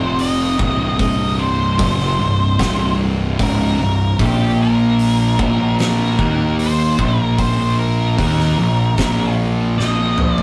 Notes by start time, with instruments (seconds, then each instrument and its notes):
Already playing: picked electric bass F1, distorted electric guitar F2 C3 F3, lead electric guitar C5
0.19 lead electric guitar D#5, open hi-hat
0.59 picked electric bass C1, distorted electric guitar C2 G2 C3, kick
0.99 lead electric guitar D#5, kick, open hi-hat
1.39 lead electric guitar C5
1.79 picked electric bass F#1, distorted electric guitar F#2 C#3 F#3, kick, open hi-hat
2.00 snare
2.20 picked electric bass C1, distorted electric guitar C2 G2
2.59 picked electric bass C1, distorted electric guitar C2 G2 C3, kick, snare, open hi-hat
3.39 picked electric bass C#1, distorted electric guitar C#2 G#2 C#3, lead electric guitar A#4, kick, open hi-hat
3.79 picked electric bass C1, distorted electric guitar C2 G2
4.19 picked electric bass A#1, distorted electric guitar A#2 F3 A#3, lead electric guitar G4, kick, open hi-hat
4.62 lead electric guitar A#4
4.99 open hi-hat
5.38 picked electric bass A#1, distorted electric guitar A#2 F3 A#3, kick
5.79 lead electric guitar A#4, snare, open hi-hat
6.19 picked electric bass D#2, distorted electric guitar D#3 A#3 D#4, kick
6.59 lead electric guitar C5, open hi-hat
6.99 picked electric bass A#1, distorted electric guitar A#2 F3 A#3, kick
7.20 lead electric guitar A#4
7.39 lead electric guitar C5, kick, open hi-hat
7.79 lead electric guitar A#4
8.18 picked electric bass D#2, distorted electric guitar D#3 A#3 D#4, kick, open hi-hat
8.40 snare
8.58 picked electric bass A#1, distorted electric guitar A#2 F3
8.98 picked electric bass A#1, distorted electric guitar A#2 F3 A#3, kick, snare, open hi-hat
9.78 picked electric bass A#1, distorted electric guitar A#2 F3 A#3, lead electric guitar D#5, snare
10.18 picked electric bass A#1, distorted electric guitar A#2 F3, mid tom
10.35 lead electric guitar D5, floor tom